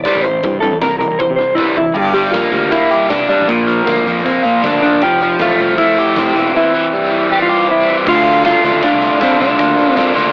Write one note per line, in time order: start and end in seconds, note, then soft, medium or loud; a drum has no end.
0.04 0.24 C3 medium
0.04 0.24 E3 loud
0.04 0.24 G3 loud
0.04 0.22 D5 medium
0.04 kick loud
0.04 snare loud
0.04 closed hi-hat medium
0.15 0.39 A1 medium
0.22 0.42 C3 medium
0.22 0.42 E3 medium
0.22 0.60 C5 medium
0.22 closed hi-hat medium
0.43 0.59 G2 loud
0.43 0.61 C3 medium
0.43 0.61 E3 medium
0.43 kick loud
0.43 closed hi-hat loud
0.60 0.70 G2 medium
0.60 0.80 C3 medium
0.60 0.80 E3 medium
0.60 0.81 A4 medium
0.60 closed hi-hat medium
0.72 0.80 E2 medium
0.81 1.05 C2 medium
0.81 0.99 C3 medium
0.81 0.99 E3 medium
0.81 0.98 A#4 medium
0.81 kick loud
0.81 snare loud
0.81 closed hi-hat medium
0.99 1.18 C3 medium
0.99 1.18 E3 medium
0.99 1.19 A#4 medium
0.99 closed hi-hat medium
1.10 1.18 C2 medium
1.19 1.37 C3 medium
1.19 1.38 E3 medium
1.19 1.35 C5 medium
1.19 kick medium
1.30 1.38 C3 medium
1.36 1.55 C2 medium
1.36 1.56 C3 medium
1.36 1.56 E3 medium
1.36 1.55 C5 medium
1.36 snare medium
1.55 1.74 E4 medium
1.55 1.85 D5 medium
1.55 kick loud
1.55 mid tom medium
1.59 1.76 C3 medium
1.59 1.77 E3 medium
1.59 1.77 G3 medium
1.77 1.94 C3 medium
1.77 1.95 E3 medium
1.77 1.97 E4 loud
1.77 floor tom medium
1.94 2.28 G1 medium
1.94 2.90 G2 medium
1.94 2.12 G4 loud
1.94 kick loud
1.94 crash loud
2.13 2.51 G3 medium
2.13 2.31 G4 loud
2.13 closed hi-hat medium
2.31 2.42 A#1 medium
2.31 2.70 A#3 medium
2.31 2.72 F4 loud
2.31 kick loud
2.31 snare medium
2.31 closed hi-hat medium
2.52 2.69 D2 medium
2.52 3.27 G3 medium
2.52 closed hi-hat medium
2.71 3.48 A#3 medium
2.71 3.08 E4 loud
2.71 kick loud
2.71 closed hi-hat medium
2.91 3.48 G4 medium
2.91 closed hi-hat medium
3.10 3.27 C2 medium
3.10 3.48 D4 medium
3.10 kick loud
3.10 snare loud
3.10 closed hi-hat loud
3.29 3.48 G3 medium
3.29 3.49 D4 loud
3.29 closed hi-hat medium
3.40 3.48 A1 medium
3.48 3.81 A#1 medium
3.48 4.44 A#2 medium
3.48 3.84 A#3 medium
3.48 kick loud
3.48 closed hi-hat medium
3.67 4.06 F3 medium
3.67 closed hi-hat medium
3.85 3.95 D2 medium
3.85 4.24 A#3 medium
3.85 kick loud
3.85 snare loud
3.85 closed hi-hat medium
4.06 4.22 F2 medium
4.06 4.83 F3 medium
4.06 closed hi-hat medium
4.18 snare soft
4.25 5.02 A#3 medium
4.25 4.45 C4 medium
4.25 kick loud
4.25 closed hi-hat loud
4.43 4.64 A#3 medium
4.43 5.01 F4 medium
4.43 closed hi-hat medium
4.64 4.79 D2 loud
4.64 5.02 D4 medium
4.64 4.81 D4 loud
4.64 kick loud
4.64 snare loud
4.64 closed hi-hat medium
4.83 5.02 F3 medium
4.83 5.02 D4 loud
4.83 closed hi-hat medium
4.92 5.00 G1 medium
5.01 5.33 F1 medium
5.01 5.21 F3 medium
5.01 5.41 G4 loud
5.01 kick loud
5.01 closed hi-hat loud
5.21 5.58 F3 medium
5.21 closed hi-hat medium
5.39 5.48 A1 medium
5.39 5.78 A3 medium
5.39 5.77 F4 loud
5.39 kick loud
5.39 snare loud
5.39 closed hi-hat loud
5.59 5.75 C2 medium
5.59 6.35 F3 medium
5.59 closed hi-hat medium
5.78 6.35 A3 medium
5.78 6.55 E4 loud
5.78 kick loud
5.78 closed hi-hat medium
5.98 6.36 G4 medium
5.98 closed hi-hat medium
6.16 6.24 F1 medium
6.16 7.68 C4 medium
6.16 kick loud
6.16 snare loud
6.16 closed hi-hat loud
6.35 6.51 E1 medium
6.35 6.53 E3 medium
6.35 closed hi-hat medium
6.55 6.73 E3 medium
6.55 7.33 E4 loud
6.74 7.10 E3 medium
6.93 7.30 G3 medium
7.11 7.87 E3 medium
7.31 8.07 G3 medium
7.31 7.41 G4 loud
7.42 7.70 F4 medium
7.49 8.06 G4 medium
7.68 8.06 C4 medium
7.68 7.96 E4 medium
7.88 8.07 E3 medium
8.07 8.54 D2 loud
8.07 8.44 D3 medium
8.07 8.44 A3 medium
8.07 8.45 D4 loud
8.07 8.45 F4 loud
8.07 kick loud
8.07 crash loud
8.26 closed hi-hat medium
8.45 8.64 D3 loud
8.45 8.63 A3 loud
8.45 8.64 D4 medium
8.45 8.65 F4 medium
8.45 8.84 F4 loud
8.45 kick loud
8.45 snare loud
8.45 closed hi-hat loud
8.64 8.71 D2 loud
8.64 8.82 D3 medium
8.64 8.83 A3 loud
8.64 8.83 D4 medium
8.64 8.84 F4 loud
8.64 closed hi-hat medium
8.75 8.82 D2 medium
8.82 9.20 D3 loud
8.82 9.20 A3 medium
8.82 9.22 D4 loud
8.82 9.20 D4 loud
8.82 9.22 F4 loud
8.82 kick loud
8.82 closed hi-hat loud
8.93 9.08 C2 medium
9.02 closed hi-hat medium
9.21 9.39 D3 medium
9.21 9.39 A3 medium
9.21 9.40 C4 medium
9.21 9.39 D4 medium
9.21 9.41 F4 loud
9.21 kick loud
9.21 snare loud
9.21 closed hi-hat loud
9.31 closed hi-hat medium
9.40 9.56 C2 medium
9.40 9.57 D3 loud
9.40 9.58 A3 medium
9.40 9.93 D4 medium
9.40 9.57 D4 loud
9.40 9.59 F4 medium
9.40 closed hi-hat medium
9.58 9.74 D2 loud
9.58 9.95 D3 loud
9.58 9.95 A#3 loud
9.58 9.96 D4 loud
9.58 9.97 F4 loud
9.58 kick loud
9.58 closed hi-hat loud
9.69 closed hi-hat medium
9.79 closed hi-hat medium
9.93 10.14 D3 loud
9.93 10.15 A#3 medium
9.93 10.12 C4 medium
9.93 kick loud
9.98 10.14 D4 loud
9.98 10.16 F4 loud
9.98 snare loud
9.98 closed hi-hat loud
10.15 10.24 D2 medium
10.15 10.32 D3 loud
10.15 10.32 A#3 medium
10.15 10.32 D4 loud
10.15 10.32 F4 medium
10.15 snare soft
10.15 closed hi-hat medium
10.26 10.32 D2 medium
10.26 closed hi-hat soft